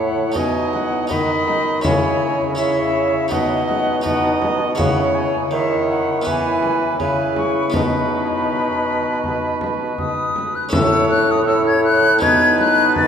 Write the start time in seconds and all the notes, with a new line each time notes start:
Already playing: A2 E4 A4 C#5
0.00 F#5
0.32 B2 D#4 F#4 D#5, frame drum
0.36 B2 G#5
0.73 F#5, frame drum
1.07 D#3 D#4 F#4 D#5 B5, frame drum
1.48 frame drum
1.81 C#3 C#4 E4 C#5 E5 G#5, frame drum
2.55 C#4 E4 C#5 E5
3.28 B2 D#4 F#4 D#5 F#5, frame drum
3.32 B2
3.67 F#5, frame drum
4.01 D#4 F#4 D#5 F#5
4.06 frame drum
4.42 frame drum
4.75 C#3 C#4 E4 G#4 C#5 E5 F#5
4.79 C#3, frame drum
5.15 G#5
5.51 D#3 E4 C#5 E5
5.89 F#5
6.22 E3 B3 E4 E5
6.26 E3 E4 B4 G#5, frame drum
6.63 frame drum
7.00 C#3 E4 B4 G#5, frame drum
7.36 C#6, frame drum
7.70 B3 F#4 D#5, frame drum
7.74 B2 D#4 B4 B5
9.24 frame drum
9.61 frame drum
9.98 D#6, frame drum
10.36 frame drum
10.55 F#6
10.69 A2 C#4 A4 E5, frame drum
10.73 A2 E4 C#5 E6
11.10 F#6
11.31 D#6
11.46 E4 C#5 E6
11.67 G#6
11.84 F#6
12.19 B2 B3 D#4 B4 D#5 G#6, frame drum
12.58 F#6, frame drum
12.96 A6, frame drum